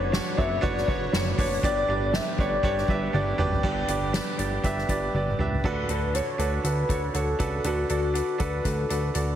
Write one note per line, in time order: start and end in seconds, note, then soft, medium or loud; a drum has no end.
0.00 0.20 F#1 loud
0.00 3.59 D3 medium
0.00 3.60 B3 medium
0.00 0.12 D4 medium
0.00 0.13 F#4 medium
0.00 1.59 F#4 medium
0.00 0.13 B4 medium
0.00 0.14 C#5 medium
0.00 0.39 C#5 loud
0.00 1.61 C#5 medium
0.12 0.32 D4 medium
0.12 0.32 F#4 medium
0.12 0.33 B4 medium
0.12 0.33 C#5 medium
0.12 snare loud
0.12 ride medium
0.37 0.59 F#1 loud
0.37 0.57 D4 medium
0.37 0.57 F#4 medium
0.37 0.57 B4 medium
0.37 0.58 C#5 medium
0.37 0.65 E5 loud
0.37 kick medium
0.37 ride medium
0.61 0.84 F#1 loud
0.61 0.81 D4 medium
0.61 0.82 F#4 medium
0.61 0.82 B4 loud
0.61 0.82 C#5 loud
0.61 0.90 D5 loud
0.61 kick medium
0.61 ride medium
0.77 snare soft
0.87 1.09 F#1 medium
0.87 1.07 D4 medium
0.87 1.07 F#4 medium
0.87 1.07 B4 medium
0.87 1.08 C#5 medium
0.87 1.39 C#5 loud
0.87 kick medium
0.87 ride medium
1.12 1.34 F#1 loud
1.12 1.32 D4 medium
1.12 1.32 F#4 medium
1.12 1.32 B4 medium
1.12 1.33 C#5 medium
1.12 snare loud
1.12 ride medium
1.38 1.59 F#1 medium
1.38 1.57 D4 medium
1.38 1.58 F#4 medium
1.38 1.58 B4 medium
1.38 1.58 C#5 medium
1.38 1.62 C#5 medium
1.38 kick medium
1.38 open hi-hat medium
1.38 ride soft
1.63 1.84 G1 loud
1.63 2.35 G2 medium
1.63 3.62 G3 medium
1.63 1.83 D4 loud
1.63 1.83 G4 medium
1.63 3.62 G4 medium
1.63 1.83 B4 medium
1.63 1.83 D5 loud
1.63 2.16 D5 loud
1.63 kick loud
1.63 hi-hat pedal medium
1.63 ride medium
1.88 2.20 G1 loud
1.88 2.08 D4 medium
1.88 2.08 G4 medium
1.88 2.08 B4 medium
1.88 2.08 D5 medium
1.88 ride medium
2.13 2.33 D4 medium
2.13 2.33 G4 medium
2.13 2.33 B4 medium
2.13 2.33 D5 medium
2.13 2.39 E5 medium
2.13 snare loud
2.13 ride medium
2.38 2.59 G1 loud
2.38 2.58 D4 medium
2.38 2.58 G4 medium
2.38 2.58 B4 medium
2.38 2.58 C#5 medium
2.38 3.35 D5 medium
2.38 kick medium
2.38 ride medium
2.63 2.84 G1 loud
2.63 2.82 D4 loud
2.63 2.83 G4 medium
2.63 2.83 B4 medium
2.63 2.83 C#5 loud
2.63 kick medium
2.63 ride medium
2.78 snare soft
2.88 3.09 G1 loud
2.88 3.08 D4 medium
2.88 3.08 G4 medium
2.88 3.08 B4 medium
2.88 3.08 E5 medium
2.88 kick medium
2.88 ride medium
3.13 3.34 G1 loud
3.13 3.33 D4 medium
3.13 3.33 G4 medium
3.13 3.33 B4 medium
3.13 3.33 D5 medium
3.13 high tom medium
3.38 3.59 F#1 loud
3.38 3.58 D4 medium
3.38 3.58 G4 medium
3.38 3.58 B4 medium
3.38 3.58 D5 loud
3.38 mid tom medium
3.53 floor tom medium
3.63 3.84 G1 loud
3.63 4.35 G2 medium
3.63 5.62 D3 medium
3.63 5.62 G3 medium
3.63 5.62 B3 medium
3.63 3.83 D4 loud
3.63 3.83 G4 loud
3.63 5.62 G4 medium
3.63 3.83 B4 medium
3.63 3.83 D5 loud
3.63 kick medium
3.63 crash medium
3.88 4.20 G1 loud
3.88 4.08 D4 medium
3.88 4.08 G4 medium
3.88 4.08 B4 medium
3.88 4.08 D5 loud
3.88 closed hi-hat medium
4.13 4.33 D4 medium
4.13 4.33 G4 medium
4.13 4.33 B4 medium
4.13 4.33 D5 medium
4.13 snare loud
4.13 closed hi-hat medium
4.38 4.59 G1 medium
4.38 4.58 D4 medium
4.38 4.58 G4 medium
4.38 4.58 B4 medium
4.38 4.59 D5 medium
4.38 closed hi-hat medium
4.63 4.84 G1 loud
4.63 4.83 D4 medium
4.63 4.83 G4 medium
4.63 4.83 B4 medium
4.63 4.84 E5 loud
4.63 kick medium
4.63 closed hi-hat medium
4.78 snare soft
4.89 5.09 G1 medium
4.89 5.08 D4 medium
4.89 5.08 G4 medium
4.89 5.08 B4 medium
4.89 5.09 D5 medium
4.89 kick medium
4.89 closed hi-hat medium
5.14 5.34 G1 loud
5.14 5.33 D4 medium
5.14 5.33 G4 medium
5.14 5.34 B4 medium
5.14 5.34 D5 medium
5.14 high tom soft
5.28 mid tom medium
5.39 5.59 C#2 medium
5.39 5.58 D4 medium
5.39 5.58 G4 medium
5.39 5.59 B4 medium
5.39 5.59 E5 medium
5.39 mid tom medium
5.53 floor tom medium
5.64 5.84 D2 loud
5.64 6.36 D3 medium
5.64 5.83 D4 medium
5.64 5.84 F#4 medium
5.64 5.84 A4 medium
5.64 5.84 B4 loud
5.64 kick loud
5.64 crash medium
5.89 6.21 D2 medium
5.89 6.08 D4 medium
5.89 6.09 F#4 medium
5.89 6.09 A4 medium
5.89 6.16 B4 medium
5.89 6.09 B4 medium
5.89 closed hi-hat medium
6.14 6.33 D4 medium
6.14 6.33 F#4 medium
6.14 6.34 A4 medium
6.14 6.65 C#5 medium
6.14 6.34 C#5 medium
6.14 closed hi-hat medium
6.38 6.59 D2 medium
6.38 6.58 D4 medium
6.38 6.58 F#4 medium
6.38 6.58 A4 medium
6.38 6.59 B4 medium
6.38 closed hi-hat medium
6.63 6.85 D2 medium
6.63 6.83 D4 medium
6.63 6.83 F#4 medium
6.63 6.84 A4 medium
6.63 6.84 B4 medium
6.63 7.17 B4 medium
6.63 closed hi-hat medium
6.89 7.10 D2 medium
6.89 7.08 D4 medium
6.89 7.08 F#4 medium
6.89 7.09 A4 medium
6.89 7.09 C#5 medium
6.89 kick medium
6.89 closed hi-hat medium
7.14 7.35 D2 medium
7.14 7.33 D4 medium
7.14 7.34 F#4 medium
7.14 7.34 A4 medium
7.14 7.67 A4 medium
7.14 7.34 C#5 medium
7.14 closed hi-hat medium
7.39 7.60 C#2 medium
7.39 7.58 D4 medium
7.39 7.58 F#4 medium
7.39 7.59 A4 medium
7.39 7.59 B4 medium
7.39 kick medium
7.39 closed hi-hat medium
7.64 7.85 D2 loud
7.64 8.36 D3 medium
7.64 7.84 D4 medium
7.64 7.84 F#4 medium
7.64 7.90 F#4 medium
7.64 7.84 A4 medium
7.64 7.85 B4 medium
7.64 closed hi-hat medium
7.89 8.22 D2 medium
7.89 8.09 D4 medium
7.89 8.09 F#4 medium
7.89 8.37 F#4 medium
7.89 8.09 A4 medium
7.89 8.09 D5 medium
7.89 closed hi-hat medium
8.14 8.34 D4 medium
8.14 8.34 F#4 medium
8.14 8.34 A4 medium
8.14 8.34 B4 medium
8.14 closed hi-hat medium
8.38 8.61 D2 medium
8.38 8.58 D4 medium
8.38 8.59 F#4 medium
8.38 8.59 A4 medium
8.38 8.59 B4 medium
8.38 8.67 B4 medium
8.38 kick medium
8.38 closed hi-hat medium
8.64 8.85 D2 loud
8.64 8.84 D4 medium
8.64 8.84 F#4 medium
8.64 8.84 A4 medium
8.64 9.36 A4 medium
8.64 8.85 B4 medium
8.64 kick medium
8.64 closed hi-hat medium
8.89 9.11 D2 medium
8.89 9.09 D4 medium
8.89 9.09 F#4 medium
8.89 9.09 A4 medium
8.89 9.10 B4 medium
8.89 closed hi-hat medium
9.14 9.36 D2 medium
9.14 9.34 D4 medium
9.14 9.34 F#4 medium
9.14 9.34 A4 medium
9.14 9.35 D5 medium
9.14 closed hi-hat medium